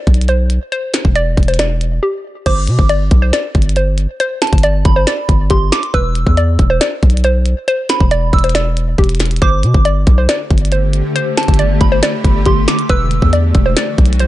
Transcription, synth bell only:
2.46 3.29 D6 loud
4.42 4.83 A5 medium
4.85 5.47 B5 medium
5.50 5.71 C6 medium
5.72 5.93 D6 medium
5.94 6.77 E6 loud
7.90 8.30 B5 medium
8.34 8.54 E6 medium
9.42 10.25 D6 loud
11.37 11.78 A5 medium
11.81 12.42 B5 medium
12.46 12.67 C6 medium
12.68 12.89 D6 medium
12.90 13.73 E6 loud

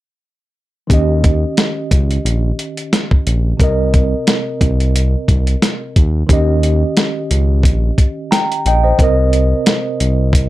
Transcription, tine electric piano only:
0.87 3.54 D#3 medium
0.87 3.55 C#4 medium
0.91 3.56 G4 medium
0.91 3.57 D#5 medium
3.57 5.90 C3 medium
3.57 5.91 C4 medium
3.61 5.92 A#4 medium
3.61 5.93 D#5 medium
6.27 8.94 D#3 medium
6.27 8.95 C#4 medium
6.31 8.96 G4 medium
6.31 8.29 D#5 medium
8.31 8.63 G5 medium
8.31 8.63 A#5 medium
8.67 8.82 D#5 medium
8.67 8.84 G5 medium
8.84 9.16 C5 medium
8.84 9.02 D#5 medium
8.97 10.49 C3 medium
8.97 10.49 C4 medium
9.02 10.49 A#4 medium
9.02 10.49 D#5 medium

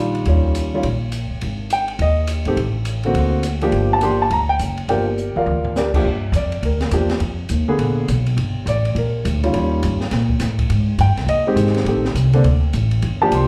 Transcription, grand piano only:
0.00 0.24 D#3 medium
0.00 0.24 G3 medium
0.00 0.25 D4 medium
0.00 0.25 F4 medium
0.27 0.70 D#3 medium
0.27 0.70 G3 medium
0.27 0.70 C#4 medium
0.27 0.71 F4 medium
0.74 0.83 D#3 medium
0.74 0.83 G3 medium
0.74 0.83 C#4 medium
0.74 0.84 F4 medium
1.73 1.99 G5 medium
2.02 2.28 D#5 medium
2.46 2.56 D#3 medium
2.46 2.57 A3 medium
2.46 2.57 C4 medium
2.46 2.57 G4 medium
3.05 3.42 D3 medium
3.05 3.43 A#3 medium
3.05 3.43 C4 medium
3.05 3.43 F#4 medium
3.62 4.00 F3 medium
3.62 4.00 A#3 medium
3.62 4.00 D4 medium
3.62 4.01 G4 medium
3.93 4.03 A5 medium
4.01 4.18 F3 medium
4.01 4.19 A#3 medium
4.01 4.19 D4 medium
4.01 4.19 G4 medium
4.01 4.21 C6 medium
4.22 4.32 A5 medium
4.33 4.50 A#5 loud
4.49 4.56 G5 loud
4.89 5.06 F3 medium
4.89 5.06 A#3 medium
4.89 5.06 D4 medium
4.89 5.34 G4 medium
4.89 5.34 A#4 medium
4.89 5.33 D5 medium
4.89 5.33 G5 medium
5.37 5.74 F4 medium
5.37 5.74 A#4 medium
5.37 5.75 D5 medium
5.37 5.74 F5 medium
5.77 5.89 D4 medium
5.77 5.88 G4 medium
5.77 5.88 A#4 medium
5.77 5.88 D5 medium
5.95 6.05 F3 medium
5.95 6.05 A#3 medium
5.95 6.05 D4 medium
5.95 6.05 G4 medium
6.36 6.62 D5 medium
6.65 6.92 A#4 medium
6.93 7.09 F3 medium
6.93 7.09 A#3 medium
6.93 7.10 D4 medium
6.93 7.10 G4 medium
7.68 8.06 D3 medium
7.68 8.07 A#3 medium
7.68 8.07 B3 medium
7.68 8.07 G#4 medium
8.68 8.95 D5 medium
8.98 9.24 A#4 soft
9.43 9.52 D#3 medium
9.43 9.52 G3 medium
9.43 9.53 C#4 medium
9.43 9.53 F4 medium
9.54 9.97 D#3 medium
9.54 9.97 G3 medium
9.54 9.98 C#4 medium
9.54 9.98 F4 medium
11.01 11.27 G5 medium
11.29 11.56 D#5 medium
11.47 11.85 D#3 medium
11.47 11.85 G#3 medium
11.47 11.85 C4 medium
11.47 11.85 G4 medium
11.88 12.03 D#3 medium
11.88 12.03 A3 medium
11.88 12.04 C4 medium
11.88 12.04 G4 medium
12.33 12.43 D3 medium
12.33 12.44 A#3 medium
12.33 12.44 C4 medium
12.33 12.44 D4 medium
13.21 13.48 F3 medium
13.21 13.48 A#3 medium
13.21 13.48 D4 medium
13.21 13.48 G4 medium
13.21 13.32 A5 medium
13.35 13.48 C6 medium

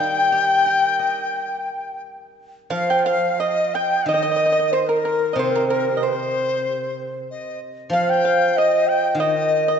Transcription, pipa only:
0.00 1.98 G5 medium
2.70 2.87 F5 medium
2.90 3.05 G5 medium
3.06 3.37 F5 medium
3.40 3.71 D#5 medium
3.75 4.05 G5 medium
4.09 4.13 D#5 medium
4.14 4.21 D#5 medium
4.23 4.29 D#5 medium
4.31 4.35 D#5 medium
4.36 4.43 D#5 medium
4.46 4.51 D#5 medium
4.52 4.58 D#5 medium
4.59 4.66 D#5 medium
4.73 4.88 C5 medium
4.89 5.04 A#4 medium
5.05 5.31 A#4 medium
5.33 5.37 D#5 medium
5.39 5.53 C5 medium
5.55 5.69 A#4 medium
5.70 5.93 A#4 medium
5.97 6.02 D#5 medium
6.03 7.57 C5 medium
7.93 8.22 F5 medium
8.25 8.54 F5 medium
8.58 9.16 D#5 medium
9.20 9.63 D#5 medium
9.68 9.79 D#5 medium

